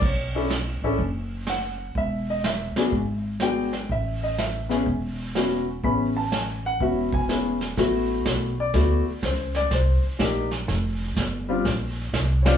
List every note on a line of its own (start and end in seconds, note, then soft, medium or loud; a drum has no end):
0.02 0.78 B1 medium
0.02 0.23 C#5 medium
0.02 brush sweep soft
0.02 kick medium
0.02 crash medium
0.35 0.49 C#4 medium
0.35 0.49 D4 medium
0.35 0.49 E4 medium
0.35 0.49 A4 medium
0.50 snare medium
0.50 hi-hat pedal soft
0.82 0.97 A1 medium
0.82 0.98 C#4 medium
0.82 0.98 D4 medium
0.82 0.98 E4 medium
0.82 0.98 A4 medium
0.99 1.91 F#1 medium
0.99 brush sweep soft
0.99 kick soft
1.47 1.93 F#5 medium
1.47 snare soft
1.47 hi-hat pedal soft
1.95 2.72 E1 medium
1.95 2.28 E5 medium
1.95 brush sweep soft
1.95 kick soft
2.30 2.45 D#5 medium
2.44 3.21 E5 medium
2.44 snare medium
2.44 hi-hat pedal soft
2.76 2.91 B3 medium
2.76 2.91 D4 medium
2.76 2.91 F#4 medium
2.76 2.92 G#4 medium
2.76 muted upright bass stroke soft
2.76 snare soft
2.92 3.85 G#1 medium
2.92 brush sweep soft
2.92 kick soft
3.40 3.70 B3 medium
3.40 3.70 D4 medium
3.40 3.70 F#4 soft
3.40 3.71 G#4 medium
3.40 3.87 G5 medium
3.40 snare soft
3.40 hi-hat pedal soft
3.73 snare soft
3.89 4.82 A1 medium
3.89 4.22 E5 medium
3.89 brush sweep soft
3.89 kick soft
4.23 4.38 D#5 medium
4.38 5.15 E5 medium
4.38 snare medium
4.38 hi-hat pedal medium
4.69 4.84 B3 medium
4.69 4.84 C#4 medium
4.69 4.85 E4 medium
4.69 4.85 G#4 medium
4.69 snare soft
4.86 5.79 E1 medium
4.86 brush sweep soft
4.86 kick soft
5.35 5.64 B3 medium
5.35 5.64 C#4 soft
5.35 5.64 E4 soft
5.35 5.64 F#4 medium
5.35 snare soft
5.35 hi-hat pedal soft
5.83 6.76 A1 medium
5.83 6.12 B3 medium
5.83 6.12 C#4 medium
5.83 6.13 E4 soft
5.83 6.13 G#4 medium
5.83 6.15 B5 medium
5.83 brush sweep soft
5.83 kick soft
6.17 6.32 A5 medium
6.32 6.64 G#5 medium
6.32 snare medium
6.32 hi-hat pedal medium
6.66 6.81 F#5 medium
6.80 7.73 E1 medium
6.80 7.27 B3 soft
6.80 7.27 C#4 soft
6.80 7.28 E4 soft
6.80 7.28 F#4 medium
6.80 7.12 E5 medium
6.80 brush sweep soft
6.80 kick soft
7.13 7.23 G#5 medium
7.13 kick soft
7.29 7.57 B3 medium
7.29 7.58 C#4 soft
7.29 7.58 E4 medium
7.29 7.59 G#4 medium
7.29 snare soft
7.29 hi-hat pedal medium
7.61 snare soft
7.77 8.24 A1 medium
7.77 8.51 A3 medium
7.77 8.52 B3 medium
7.77 8.52 E4 medium
7.77 8.52 F#4 medium
7.77 brush sweep soft
7.77 kick soft
7.77 snare soft
8.26 8.73 B1 medium
8.26 kick soft
8.26 snare medium
8.26 hi-hat pedal medium
8.60 9.20 D5 medium
8.74 9.04 D2 medium
8.74 9.03 A3 medium
8.74 9.03 B3 medium
8.74 9.04 E4 medium
8.74 9.04 F#4 medium
8.74 brush sweep soft
8.74 kick soft
8.74 snare soft
9.07 muted upright bass stroke soft
9.22 9.70 C#2 medium
9.22 9.55 C5 medium
9.22 kick soft
9.22 snare medium
9.22 hi-hat pedal medium
9.55 9.71 D5 medium
9.55 snare soft
9.71 10.01 C2 medium
9.71 10.03 C5 medium
9.71 brush sweep soft
9.71 kick soft
9.71 snare soft
10.03 muted upright bass stroke soft
10.19 10.67 A#1 medium
10.19 10.48 A#3 medium
10.19 10.48 D4 medium
10.19 10.49 D#4 medium
10.19 10.49 G4 medium
10.19 kick soft
10.19 snare medium
10.19 hi-hat pedal medium
10.51 snare soft
10.68 11.15 F1 medium
10.68 brush sweep medium
10.68 kick soft
10.68 snare soft
11.16 11.63 G1 medium
11.16 kick soft
11.16 snare medium
11.16 hi-hat pedal medium
11.49 11.63 G3 medium
11.49 11.63 C4 medium
11.49 11.64 D4 medium
11.49 11.64 F4 medium
11.65 12.12 A#1 medium
11.65 brush sweep soft
11.65 kick soft
11.65 snare soft
12.13 12.57 C2 medium
12.13 kick soft
12.13 snare medium
12.13 hi-hat pedal medium
12.42 12.57 G3 medium
12.42 12.57 C4 medium
12.42 12.57 D4 medium
12.42 12.45 C#5 medium
12.42 snare medium
12.42 ride medium
12.47 12.57 F4 medium
12.47 12.57 D5 medium